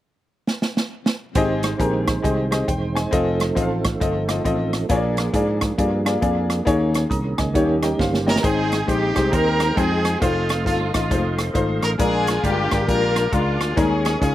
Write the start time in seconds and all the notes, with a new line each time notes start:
0.47 snare
0.62 snare
0.77 snare
1.06 snare
1.35 G#1 G#2 D#3 G#3 C4 D#4 G4 G#4 C5 D#5, kick, closed hi-hat
1.63 cross-stick, closed hi-hat
1.78 A#1 C4 G4 G#4 A#4, kick, closed hi-hat
2.08 kick, cross-stick, closed hi-hat
2.22 C2 C4 G4 G#4 D#5, kick, closed hi-hat
2.51 C4 G4 G#4 D#5, cross-stick, closed hi-hat
2.68 E1 C5 G5, kick, closed hi-hat
2.95 D#5 G#5, cross-stick, closed hi-hat
3.11 F1 F3 A3 C4 F4 A4 D#5, kick, closed hi-hat
3.40 cross-stick, closed hi-hat
3.55 A1 C4 F4 A4 D#5, kick, closed hi-hat
3.62 F5
3.85 kick, cross-stick, closed hi-hat
4.00 G1 C4 F4 A4 D#5, kick, closed hi-hat
4.28 C4 F4 A4 D#5, cross-stick, closed hi-hat
4.44 A1 C4 F4 A4 D#5, kick, closed hi-hat
4.73 cross-stick, closed hi-hat
4.89 A#1 A#2 A#3 D4 F4 G#4 C#5, kick, closed hi-hat
4.96 D5
5.17 cross-stick, closed hi-hat
5.33 G#2 A#3 F4 G#4 D5, kick, closed hi-hat
5.61 kick, cross-stick, closed hi-hat
5.78 G2 A#3 F4 G#4 D5, kick, closed hi-hat
6.05 A#3 F4 G#4 D5, cross-stick, closed hi-hat
6.21 F2 A#3 F4 G#4 D5, kick, closed hi-hat
6.50 cross-stick, closed hi-hat
6.65 D#2 D#3 A#3 C#4 D#4 G#4 C#5, kick, closed hi-hat
6.94 cross-stick, closed hi-hat
7.10 C2 A#5 D#6, kick, closed hi-hat
7.38 C#2 D#5 G#5, kick, cross-stick, closed hi-hat
7.54 D#2 D#3 G3 A#3 C#4 D#4 G4 C#5, kick, closed hi-hat
7.83 A#4 D#5 G5, cross-stick, closed hi-hat
7.99 G1 C5 F5, kick, snare
8.14 snare
8.27 A#4 C#5 D#5 G5, snare
8.36 snare
8.42 G#1 G#2 G#3 C4 D#4 G#4 C5 D#5 G5 C6, kick, closed hi-hat
8.72 cross-stick, closed hi-hat
8.86 A#1 G#3 C4 D#4 G4 C5, kick, closed hi-hat
9.14 C2 G#3 D#4 G4 C5, kick, cross-stick, closed hi-hat
9.31 D#2 G#3 D#4 G4 A#4 C5 G5, kick, closed hi-hat
9.60 cross-stick, closed hi-hat
9.76 F2 G#3 C4 D#4 G#4 C5 G5, kick, closed hi-hat
10.05 cross-stick, closed hi-hat
10.21 F1 A3 C4 D#4 F4 A4 C5 F5, kick, closed hi-hat
10.49 cross-stick, closed hi-hat
10.65 G1 A3 D#4 F4 A4, kick, closed hi-hat
10.93 A1 A3 C4 D#4 F4 D#5, kick, cross-stick, closed hi-hat
11.10 F1 G#3 D#4 F4 C5, kick, closed hi-hat
11.15 A3
11.39 cross-stick, closed hi-hat
11.53 G#1 A3 D#4 F4 C5, kick, closed hi-hat
11.83 A1 A#4, cross-stick, closed hi-hat
11.98 A#1 A#2 G#3 D4 F4 G#4 A#4 D6, kick, closed hi-hat
12.27 cross-stick, closed hi-hat
12.43 G1 G#3 D4 F4 G4 A#4, kick, closed hi-hat
12.71 G#1 G#3 D4 F4 A#4, kick, cross-stick, closed hi-hat
12.87 A#1 G#3 D4 F4 G4 A#4, kick, closed hi-hat
13.16 cross-stick, closed hi-hat
13.31 C#2 G#3 D4 F4 A#4, kick, closed hi-hat
13.61 D2, cross-stick, closed hi-hat
13.76 D#2 D#3 G3 C#4 D#4 G#4 A#4 D#5 C#6, kick, closed hi-hat
13.81 G#3
14.05 G#4, cross-stick, closed hi-hat
14.21 C#2 G#3 C#4 D#4 F4 G#4, kick, closed hi-hat